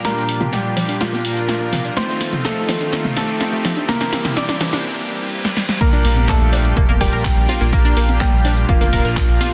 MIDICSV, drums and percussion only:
0, 0, Header, 1, 2, 480
1, 0, Start_track
1, 0, Key_signature, -2, "major"
1, 0, Tempo, 480000
1, 48, Time_signature, 4, 2, 24, 8
1, 9535, End_track
2, 0, Start_track
2, 0, Title_t, "Drums"
2, 46, Note_on_c, 9, 82, 78
2, 47, Note_on_c, 9, 38, 59
2, 47, Note_on_c, 9, 42, 80
2, 55, Note_on_c, 9, 69, 41
2, 147, Note_off_c, 9, 38, 0
2, 147, Note_off_c, 9, 42, 0
2, 147, Note_off_c, 9, 82, 0
2, 155, Note_off_c, 9, 69, 0
2, 163, Note_on_c, 9, 38, 45
2, 263, Note_off_c, 9, 38, 0
2, 287, Note_on_c, 9, 46, 109
2, 287, Note_on_c, 9, 82, 65
2, 295, Note_on_c, 9, 69, 77
2, 387, Note_off_c, 9, 46, 0
2, 387, Note_off_c, 9, 82, 0
2, 395, Note_off_c, 9, 69, 0
2, 408, Note_on_c, 9, 42, 51
2, 408, Note_on_c, 9, 47, 94
2, 408, Note_on_c, 9, 63, 91
2, 416, Note_on_c, 9, 69, 31
2, 508, Note_off_c, 9, 42, 0
2, 508, Note_off_c, 9, 47, 0
2, 508, Note_off_c, 9, 63, 0
2, 516, Note_off_c, 9, 69, 0
2, 523, Note_on_c, 9, 82, 100
2, 526, Note_on_c, 9, 38, 115
2, 527, Note_off_c, 9, 38, 0
2, 527, Note_on_c, 9, 38, 64
2, 527, Note_on_c, 9, 42, 80
2, 535, Note_on_c, 9, 69, 44
2, 623, Note_off_c, 9, 82, 0
2, 627, Note_off_c, 9, 38, 0
2, 627, Note_off_c, 9, 42, 0
2, 635, Note_off_c, 9, 69, 0
2, 766, Note_on_c, 9, 60, 70
2, 768, Note_on_c, 9, 46, 102
2, 769, Note_on_c, 9, 82, 66
2, 775, Note_on_c, 9, 69, 72
2, 866, Note_off_c, 9, 60, 0
2, 868, Note_off_c, 9, 46, 0
2, 869, Note_off_c, 9, 82, 0
2, 875, Note_off_c, 9, 69, 0
2, 886, Note_on_c, 9, 42, 42
2, 888, Note_on_c, 9, 46, 64
2, 896, Note_on_c, 9, 69, 32
2, 986, Note_off_c, 9, 42, 0
2, 988, Note_off_c, 9, 46, 0
2, 996, Note_off_c, 9, 69, 0
2, 1007, Note_on_c, 9, 38, 66
2, 1007, Note_on_c, 9, 42, 80
2, 1007, Note_on_c, 9, 82, 82
2, 1015, Note_on_c, 9, 69, 44
2, 1107, Note_off_c, 9, 38, 0
2, 1107, Note_off_c, 9, 42, 0
2, 1107, Note_off_c, 9, 82, 0
2, 1115, Note_off_c, 9, 69, 0
2, 1128, Note_on_c, 9, 63, 67
2, 1134, Note_on_c, 9, 38, 58
2, 1228, Note_off_c, 9, 63, 0
2, 1235, Note_off_c, 9, 38, 0
2, 1246, Note_on_c, 9, 82, 73
2, 1247, Note_on_c, 9, 46, 110
2, 1255, Note_on_c, 9, 69, 79
2, 1346, Note_off_c, 9, 82, 0
2, 1347, Note_off_c, 9, 46, 0
2, 1355, Note_off_c, 9, 69, 0
2, 1360, Note_on_c, 9, 38, 43
2, 1368, Note_on_c, 9, 42, 51
2, 1376, Note_on_c, 9, 69, 32
2, 1460, Note_off_c, 9, 38, 0
2, 1468, Note_off_c, 9, 42, 0
2, 1476, Note_off_c, 9, 69, 0
2, 1478, Note_on_c, 9, 82, 88
2, 1485, Note_on_c, 9, 38, 110
2, 1487, Note_off_c, 9, 38, 0
2, 1487, Note_on_c, 9, 38, 70
2, 1487, Note_on_c, 9, 42, 77
2, 1494, Note_on_c, 9, 69, 43
2, 1578, Note_off_c, 9, 82, 0
2, 1587, Note_off_c, 9, 38, 0
2, 1587, Note_off_c, 9, 42, 0
2, 1594, Note_off_c, 9, 69, 0
2, 1722, Note_on_c, 9, 82, 84
2, 1726, Note_on_c, 9, 38, 99
2, 1727, Note_on_c, 9, 46, 105
2, 1727, Note_on_c, 9, 47, 82
2, 1727, Note_on_c, 9, 63, 91
2, 1735, Note_on_c, 9, 69, 67
2, 1822, Note_off_c, 9, 82, 0
2, 1826, Note_off_c, 9, 38, 0
2, 1827, Note_off_c, 9, 46, 0
2, 1827, Note_off_c, 9, 47, 0
2, 1827, Note_off_c, 9, 63, 0
2, 1835, Note_off_c, 9, 69, 0
2, 1849, Note_on_c, 9, 42, 52
2, 1856, Note_on_c, 9, 69, 34
2, 1949, Note_off_c, 9, 42, 0
2, 1956, Note_off_c, 9, 69, 0
2, 1967, Note_on_c, 9, 38, 73
2, 1967, Note_on_c, 9, 42, 75
2, 1968, Note_on_c, 9, 82, 78
2, 1975, Note_on_c, 9, 69, 44
2, 2067, Note_off_c, 9, 38, 0
2, 2067, Note_off_c, 9, 42, 0
2, 2068, Note_off_c, 9, 82, 0
2, 2075, Note_off_c, 9, 69, 0
2, 2089, Note_on_c, 9, 38, 48
2, 2189, Note_off_c, 9, 38, 0
2, 2207, Note_on_c, 9, 38, 80
2, 2207, Note_on_c, 9, 46, 120
2, 2209, Note_on_c, 9, 82, 67
2, 2215, Note_on_c, 9, 69, 78
2, 2307, Note_off_c, 9, 38, 0
2, 2307, Note_off_c, 9, 46, 0
2, 2309, Note_off_c, 9, 82, 0
2, 2315, Note_off_c, 9, 69, 0
2, 2328, Note_on_c, 9, 42, 49
2, 2328, Note_on_c, 9, 47, 94
2, 2328, Note_on_c, 9, 63, 88
2, 2335, Note_on_c, 9, 69, 31
2, 2428, Note_off_c, 9, 42, 0
2, 2428, Note_off_c, 9, 47, 0
2, 2428, Note_off_c, 9, 63, 0
2, 2435, Note_off_c, 9, 69, 0
2, 2447, Note_on_c, 9, 38, 81
2, 2447, Note_on_c, 9, 42, 78
2, 2447, Note_on_c, 9, 60, 59
2, 2451, Note_off_c, 9, 38, 0
2, 2451, Note_on_c, 9, 38, 108
2, 2453, Note_on_c, 9, 82, 98
2, 2454, Note_on_c, 9, 69, 44
2, 2547, Note_off_c, 9, 42, 0
2, 2547, Note_off_c, 9, 60, 0
2, 2551, Note_off_c, 9, 38, 0
2, 2553, Note_off_c, 9, 82, 0
2, 2554, Note_off_c, 9, 69, 0
2, 2686, Note_on_c, 9, 38, 82
2, 2686, Note_on_c, 9, 46, 109
2, 2687, Note_on_c, 9, 60, 68
2, 2688, Note_on_c, 9, 82, 69
2, 2694, Note_on_c, 9, 69, 75
2, 2786, Note_off_c, 9, 38, 0
2, 2786, Note_off_c, 9, 46, 0
2, 2787, Note_off_c, 9, 60, 0
2, 2788, Note_off_c, 9, 82, 0
2, 2794, Note_off_c, 9, 69, 0
2, 2808, Note_on_c, 9, 42, 52
2, 2816, Note_on_c, 9, 69, 31
2, 2908, Note_off_c, 9, 42, 0
2, 2916, Note_off_c, 9, 69, 0
2, 2926, Note_on_c, 9, 38, 82
2, 2926, Note_on_c, 9, 42, 80
2, 2933, Note_on_c, 9, 69, 43
2, 2933, Note_on_c, 9, 82, 88
2, 3026, Note_off_c, 9, 38, 0
2, 3026, Note_off_c, 9, 42, 0
2, 3033, Note_off_c, 9, 69, 0
2, 3033, Note_off_c, 9, 82, 0
2, 3049, Note_on_c, 9, 47, 86
2, 3049, Note_on_c, 9, 63, 66
2, 3149, Note_off_c, 9, 47, 0
2, 3149, Note_off_c, 9, 63, 0
2, 3166, Note_on_c, 9, 38, 88
2, 3166, Note_on_c, 9, 46, 109
2, 3167, Note_on_c, 9, 82, 76
2, 3173, Note_on_c, 9, 69, 79
2, 3266, Note_off_c, 9, 38, 0
2, 3266, Note_off_c, 9, 46, 0
2, 3267, Note_off_c, 9, 82, 0
2, 3273, Note_off_c, 9, 69, 0
2, 3287, Note_on_c, 9, 42, 51
2, 3295, Note_on_c, 9, 69, 33
2, 3387, Note_off_c, 9, 42, 0
2, 3395, Note_off_c, 9, 69, 0
2, 3404, Note_on_c, 9, 82, 84
2, 3407, Note_on_c, 9, 38, 86
2, 3407, Note_on_c, 9, 42, 78
2, 3409, Note_off_c, 9, 38, 0
2, 3409, Note_on_c, 9, 38, 117
2, 3414, Note_on_c, 9, 69, 43
2, 3504, Note_off_c, 9, 82, 0
2, 3507, Note_off_c, 9, 42, 0
2, 3509, Note_off_c, 9, 38, 0
2, 3514, Note_off_c, 9, 69, 0
2, 3647, Note_on_c, 9, 38, 86
2, 3647, Note_on_c, 9, 46, 110
2, 3647, Note_on_c, 9, 60, 66
2, 3647, Note_on_c, 9, 63, 86
2, 3652, Note_on_c, 9, 82, 63
2, 3654, Note_on_c, 9, 69, 70
2, 3747, Note_off_c, 9, 38, 0
2, 3747, Note_off_c, 9, 46, 0
2, 3747, Note_off_c, 9, 60, 0
2, 3747, Note_off_c, 9, 63, 0
2, 3752, Note_off_c, 9, 82, 0
2, 3754, Note_off_c, 9, 69, 0
2, 3767, Note_on_c, 9, 42, 51
2, 3775, Note_on_c, 9, 69, 33
2, 3867, Note_off_c, 9, 42, 0
2, 3875, Note_off_c, 9, 69, 0
2, 3879, Note_on_c, 9, 38, 104
2, 3884, Note_on_c, 9, 82, 82
2, 3886, Note_off_c, 9, 38, 0
2, 3886, Note_on_c, 9, 38, 94
2, 3886, Note_on_c, 9, 42, 77
2, 3894, Note_on_c, 9, 69, 43
2, 3984, Note_off_c, 9, 82, 0
2, 3986, Note_off_c, 9, 38, 0
2, 3986, Note_off_c, 9, 42, 0
2, 3994, Note_off_c, 9, 69, 0
2, 4007, Note_on_c, 9, 38, 81
2, 4007, Note_on_c, 9, 42, 36
2, 4107, Note_off_c, 9, 38, 0
2, 4107, Note_off_c, 9, 42, 0
2, 4126, Note_on_c, 9, 38, 97
2, 4126, Note_on_c, 9, 46, 114
2, 4126, Note_on_c, 9, 82, 63
2, 4134, Note_on_c, 9, 69, 81
2, 4226, Note_off_c, 9, 38, 0
2, 4226, Note_off_c, 9, 46, 0
2, 4226, Note_off_c, 9, 82, 0
2, 4234, Note_off_c, 9, 69, 0
2, 4248, Note_on_c, 9, 38, 83
2, 4248, Note_on_c, 9, 42, 49
2, 4248, Note_on_c, 9, 47, 91
2, 4248, Note_on_c, 9, 63, 90
2, 4256, Note_on_c, 9, 69, 33
2, 4348, Note_off_c, 9, 38, 0
2, 4348, Note_off_c, 9, 42, 0
2, 4348, Note_off_c, 9, 47, 0
2, 4348, Note_off_c, 9, 63, 0
2, 4356, Note_off_c, 9, 69, 0
2, 4367, Note_on_c, 9, 82, 91
2, 4368, Note_on_c, 9, 38, 118
2, 4368, Note_on_c, 9, 42, 79
2, 4375, Note_on_c, 9, 69, 44
2, 4467, Note_off_c, 9, 42, 0
2, 4467, Note_off_c, 9, 82, 0
2, 4468, Note_off_c, 9, 38, 0
2, 4475, Note_off_c, 9, 69, 0
2, 4488, Note_on_c, 9, 38, 86
2, 4496, Note_on_c, 9, 69, 30
2, 4588, Note_off_c, 9, 38, 0
2, 4596, Note_off_c, 9, 69, 0
2, 4606, Note_on_c, 9, 38, 100
2, 4606, Note_on_c, 9, 46, 106
2, 4607, Note_on_c, 9, 60, 68
2, 4607, Note_on_c, 9, 82, 63
2, 4614, Note_on_c, 9, 69, 79
2, 4615, Note_off_c, 9, 38, 0
2, 4615, Note_on_c, 9, 38, 90
2, 4668, Note_off_c, 9, 82, 0
2, 4668, Note_on_c, 9, 82, 69
2, 4677, Note_off_c, 9, 38, 0
2, 4677, Note_on_c, 9, 38, 93
2, 4706, Note_off_c, 9, 46, 0
2, 4707, Note_off_c, 9, 60, 0
2, 4714, Note_off_c, 9, 69, 0
2, 4724, Note_off_c, 9, 38, 0
2, 4724, Note_on_c, 9, 38, 92
2, 4727, Note_off_c, 9, 82, 0
2, 4727, Note_on_c, 9, 82, 74
2, 4728, Note_off_c, 9, 38, 0
2, 4728, Note_on_c, 9, 38, 89
2, 4728, Note_on_c, 9, 46, 65
2, 4736, Note_on_c, 9, 69, 34
2, 4781, Note_off_c, 9, 38, 0
2, 4781, Note_on_c, 9, 38, 87
2, 4786, Note_off_c, 9, 82, 0
2, 4786, Note_on_c, 9, 82, 62
2, 4828, Note_off_c, 9, 46, 0
2, 4836, Note_off_c, 9, 69, 0
2, 4881, Note_off_c, 9, 38, 0
2, 4886, Note_off_c, 9, 82, 0
2, 5448, Note_on_c, 9, 38, 55
2, 5548, Note_off_c, 9, 38, 0
2, 5567, Note_on_c, 9, 38, 76
2, 5667, Note_off_c, 9, 38, 0
2, 5688, Note_on_c, 9, 38, 83
2, 5788, Note_off_c, 9, 38, 0
2, 5803, Note_on_c, 9, 82, 88
2, 5807, Note_on_c, 9, 36, 118
2, 5808, Note_on_c, 9, 42, 70
2, 5808, Note_on_c, 9, 49, 107
2, 5816, Note_on_c, 9, 69, 46
2, 5903, Note_off_c, 9, 82, 0
2, 5907, Note_off_c, 9, 36, 0
2, 5908, Note_off_c, 9, 42, 0
2, 5908, Note_off_c, 9, 49, 0
2, 5916, Note_off_c, 9, 69, 0
2, 5920, Note_on_c, 9, 38, 43
2, 5929, Note_on_c, 9, 42, 42
2, 6020, Note_off_c, 9, 38, 0
2, 6029, Note_off_c, 9, 42, 0
2, 6040, Note_on_c, 9, 82, 70
2, 6047, Note_on_c, 9, 46, 115
2, 6055, Note_on_c, 9, 69, 81
2, 6140, Note_off_c, 9, 82, 0
2, 6147, Note_off_c, 9, 46, 0
2, 6155, Note_off_c, 9, 69, 0
2, 6169, Note_on_c, 9, 42, 41
2, 6169, Note_on_c, 9, 63, 97
2, 6176, Note_on_c, 9, 69, 33
2, 6269, Note_off_c, 9, 42, 0
2, 6269, Note_off_c, 9, 63, 0
2, 6276, Note_off_c, 9, 69, 0
2, 6278, Note_on_c, 9, 38, 127
2, 6288, Note_on_c, 9, 36, 116
2, 6288, Note_on_c, 9, 42, 73
2, 6288, Note_on_c, 9, 82, 98
2, 6289, Note_on_c, 9, 60, 60
2, 6290, Note_on_c, 9, 39, 124
2, 6296, Note_on_c, 9, 69, 48
2, 6378, Note_off_c, 9, 38, 0
2, 6387, Note_off_c, 9, 36, 0
2, 6388, Note_off_c, 9, 42, 0
2, 6388, Note_off_c, 9, 82, 0
2, 6389, Note_off_c, 9, 60, 0
2, 6390, Note_off_c, 9, 39, 0
2, 6396, Note_off_c, 9, 69, 0
2, 6409, Note_on_c, 9, 42, 41
2, 6509, Note_off_c, 9, 42, 0
2, 6528, Note_on_c, 9, 46, 106
2, 6528, Note_on_c, 9, 60, 73
2, 6532, Note_on_c, 9, 82, 70
2, 6536, Note_on_c, 9, 69, 80
2, 6628, Note_off_c, 9, 46, 0
2, 6628, Note_off_c, 9, 60, 0
2, 6632, Note_off_c, 9, 82, 0
2, 6636, Note_off_c, 9, 69, 0
2, 6649, Note_on_c, 9, 42, 41
2, 6656, Note_on_c, 9, 69, 33
2, 6749, Note_off_c, 9, 42, 0
2, 6756, Note_off_c, 9, 69, 0
2, 6760, Note_on_c, 9, 82, 87
2, 6767, Note_on_c, 9, 36, 125
2, 6768, Note_on_c, 9, 42, 67
2, 6769, Note_on_c, 9, 47, 93
2, 6776, Note_on_c, 9, 69, 46
2, 6860, Note_off_c, 9, 82, 0
2, 6867, Note_off_c, 9, 36, 0
2, 6868, Note_off_c, 9, 42, 0
2, 6869, Note_off_c, 9, 47, 0
2, 6876, Note_off_c, 9, 69, 0
2, 6890, Note_on_c, 9, 42, 42
2, 6890, Note_on_c, 9, 63, 73
2, 6990, Note_off_c, 9, 42, 0
2, 6990, Note_off_c, 9, 63, 0
2, 7007, Note_on_c, 9, 36, 59
2, 7008, Note_on_c, 9, 46, 107
2, 7008, Note_on_c, 9, 82, 69
2, 7016, Note_on_c, 9, 69, 85
2, 7107, Note_off_c, 9, 36, 0
2, 7108, Note_off_c, 9, 46, 0
2, 7108, Note_off_c, 9, 82, 0
2, 7116, Note_off_c, 9, 69, 0
2, 7130, Note_on_c, 9, 42, 42
2, 7137, Note_on_c, 9, 69, 34
2, 7230, Note_off_c, 9, 42, 0
2, 7237, Note_off_c, 9, 69, 0
2, 7245, Note_on_c, 9, 38, 121
2, 7247, Note_on_c, 9, 36, 113
2, 7249, Note_on_c, 9, 42, 72
2, 7250, Note_on_c, 9, 39, 126
2, 7251, Note_on_c, 9, 82, 99
2, 7256, Note_on_c, 9, 69, 46
2, 7345, Note_off_c, 9, 38, 0
2, 7347, Note_off_c, 9, 36, 0
2, 7349, Note_off_c, 9, 42, 0
2, 7350, Note_off_c, 9, 39, 0
2, 7351, Note_off_c, 9, 82, 0
2, 7356, Note_off_c, 9, 69, 0
2, 7369, Note_on_c, 9, 42, 44
2, 7469, Note_off_c, 9, 42, 0
2, 7489, Note_on_c, 9, 46, 99
2, 7490, Note_on_c, 9, 60, 71
2, 7490, Note_on_c, 9, 63, 94
2, 7492, Note_on_c, 9, 82, 71
2, 7497, Note_on_c, 9, 69, 75
2, 7589, Note_off_c, 9, 46, 0
2, 7589, Note_off_c, 9, 60, 0
2, 7589, Note_off_c, 9, 63, 0
2, 7592, Note_off_c, 9, 82, 0
2, 7597, Note_off_c, 9, 69, 0
2, 7609, Note_on_c, 9, 38, 41
2, 7610, Note_on_c, 9, 42, 41
2, 7617, Note_on_c, 9, 69, 34
2, 7709, Note_off_c, 9, 38, 0
2, 7710, Note_off_c, 9, 42, 0
2, 7717, Note_off_c, 9, 69, 0
2, 7728, Note_on_c, 9, 36, 126
2, 7729, Note_on_c, 9, 42, 68
2, 7731, Note_on_c, 9, 82, 85
2, 7736, Note_on_c, 9, 69, 43
2, 7828, Note_off_c, 9, 36, 0
2, 7829, Note_off_c, 9, 42, 0
2, 7831, Note_off_c, 9, 82, 0
2, 7836, Note_off_c, 9, 69, 0
2, 7845, Note_on_c, 9, 38, 53
2, 7849, Note_on_c, 9, 42, 41
2, 7945, Note_off_c, 9, 38, 0
2, 7949, Note_off_c, 9, 42, 0
2, 7963, Note_on_c, 9, 82, 62
2, 7968, Note_on_c, 9, 46, 112
2, 7976, Note_on_c, 9, 69, 79
2, 8063, Note_off_c, 9, 82, 0
2, 8068, Note_off_c, 9, 46, 0
2, 8076, Note_off_c, 9, 69, 0
2, 8089, Note_on_c, 9, 42, 42
2, 8089, Note_on_c, 9, 63, 93
2, 8096, Note_on_c, 9, 69, 33
2, 8189, Note_off_c, 9, 42, 0
2, 8189, Note_off_c, 9, 63, 0
2, 8196, Note_off_c, 9, 69, 0
2, 8201, Note_on_c, 9, 82, 99
2, 8205, Note_on_c, 9, 38, 123
2, 8208, Note_on_c, 9, 36, 123
2, 8208, Note_on_c, 9, 42, 69
2, 8209, Note_on_c, 9, 39, 127
2, 8216, Note_on_c, 9, 69, 46
2, 8301, Note_off_c, 9, 82, 0
2, 8305, Note_off_c, 9, 38, 0
2, 8308, Note_off_c, 9, 36, 0
2, 8308, Note_off_c, 9, 42, 0
2, 8309, Note_off_c, 9, 39, 0
2, 8316, Note_off_c, 9, 69, 0
2, 8329, Note_on_c, 9, 42, 40
2, 8429, Note_off_c, 9, 42, 0
2, 8448, Note_on_c, 9, 46, 115
2, 8448, Note_on_c, 9, 60, 72
2, 8453, Note_on_c, 9, 82, 67
2, 8455, Note_on_c, 9, 69, 75
2, 8548, Note_off_c, 9, 46, 0
2, 8548, Note_off_c, 9, 60, 0
2, 8553, Note_off_c, 9, 82, 0
2, 8555, Note_off_c, 9, 69, 0
2, 8569, Note_on_c, 9, 42, 42
2, 8572, Note_off_c, 9, 42, 0
2, 8572, Note_on_c, 9, 42, 47
2, 8577, Note_on_c, 9, 69, 33
2, 8672, Note_off_c, 9, 42, 0
2, 8677, Note_off_c, 9, 69, 0
2, 8688, Note_on_c, 9, 36, 127
2, 8688, Note_on_c, 9, 42, 65
2, 8689, Note_on_c, 9, 82, 83
2, 8696, Note_on_c, 9, 69, 45
2, 8788, Note_off_c, 9, 36, 0
2, 8788, Note_off_c, 9, 42, 0
2, 8789, Note_off_c, 9, 82, 0
2, 8796, Note_off_c, 9, 69, 0
2, 8808, Note_on_c, 9, 38, 67
2, 8810, Note_on_c, 9, 42, 41
2, 8810, Note_on_c, 9, 47, 102
2, 8810, Note_on_c, 9, 63, 71
2, 8908, Note_off_c, 9, 38, 0
2, 8910, Note_off_c, 9, 42, 0
2, 8910, Note_off_c, 9, 47, 0
2, 8910, Note_off_c, 9, 63, 0
2, 8928, Note_on_c, 9, 36, 63
2, 8929, Note_on_c, 9, 46, 111
2, 8929, Note_on_c, 9, 82, 76
2, 8936, Note_on_c, 9, 69, 80
2, 9028, Note_off_c, 9, 36, 0
2, 9029, Note_off_c, 9, 46, 0
2, 9029, Note_off_c, 9, 82, 0
2, 9036, Note_off_c, 9, 69, 0
2, 9050, Note_on_c, 9, 42, 40
2, 9056, Note_on_c, 9, 38, 45
2, 9057, Note_on_c, 9, 69, 34
2, 9150, Note_off_c, 9, 42, 0
2, 9156, Note_off_c, 9, 38, 0
2, 9157, Note_off_c, 9, 69, 0
2, 9168, Note_on_c, 9, 36, 121
2, 9168, Note_on_c, 9, 42, 69
2, 9169, Note_on_c, 9, 38, 127
2, 9169, Note_on_c, 9, 82, 92
2, 9170, Note_on_c, 9, 39, 125
2, 9176, Note_on_c, 9, 69, 44
2, 9268, Note_off_c, 9, 36, 0
2, 9268, Note_off_c, 9, 42, 0
2, 9269, Note_off_c, 9, 38, 0
2, 9269, Note_off_c, 9, 82, 0
2, 9270, Note_off_c, 9, 39, 0
2, 9276, Note_off_c, 9, 69, 0
2, 9289, Note_on_c, 9, 42, 41
2, 9389, Note_off_c, 9, 42, 0
2, 9408, Note_on_c, 9, 46, 105
2, 9408, Note_on_c, 9, 63, 92
2, 9410, Note_off_c, 9, 46, 0
2, 9410, Note_on_c, 9, 46, 84
2, 9415, Note_on_c, 9, 69, 72
2, 9508, Note_off_c, 9, 63, 0
2, 9510, Note_off_c, 9, 46, 0
2, 9515, Note_off_c, 9, 69, 0
2, 9535, End_track
0, 0, End_of_file